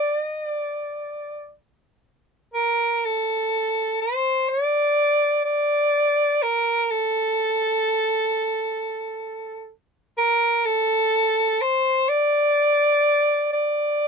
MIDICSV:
0, 0, Header, 1, 2, 480
1, 0, Start_track
1, 0, Tempo, 500000
1, 13515, End_track
2, 0, Start_track
2, 0, Title_t, "Soprano saxophone"
2, 0, Program_c, 0, 64
2, 0, Note_on_c, 0, 74, 93
2, 220, Note_off_c, 0, 74, 0
2, 220, Note_on_c, 0, 75, 93
2, 431, Note_off_c, 0, 75, 0
2, 431, Note_on_c, 0, 74, 93
2, 1457, Note_off_c, 0, 74, 0
2, 2437, Note_on_c, 0, 70, 86
2, 2925, Note_on_c, 0, 69, 78
2, 2939, Note_off_c, 0, 70, 0
2, 3842, Note_off_c, 0, 69, 0
2, 3848, Note_on_c, 0, 72, 84
2, 4307, Note_on_c, 0, 74, 103
2, 4322, Note_off_c, 0, 72, 0
2, 5222, Note_off_c, 0, 74, 0
2, 5228, Note_on_c, 0, 74, 92
2, 6166, Note_on_c, 0, 70, 92
2, 6181, Note_off_c, 0, 74, 0
2, 6626, Note_on_c, 0, 69, 82
2, 6640, Note_off_c, 0, 70, 0
2, 9314, Note_off_c, 0, 69, 0
2, 9767, Note_on_c, 0, 70, 101
2, 10223, Note_on_c, 0, 69, 94
2, 10237, Note_off_c, 0, 70, 0
2, 11145, Note_on_c, 0, 72, 92
2, 11160, Note_off_c, 0, 69, 0
2, 11600, Note_on_c, 0, 74, 109
2, 11615, Note_off_c, 0, 72, 0
2, 12976, Note_off_c, 0, 74, 0
2, 12984, Note_on_c, 0, 74, 88
2, 13515, Note_off_c, 0, 74, 0
2, 13515, End_track
0, 0, End_of_file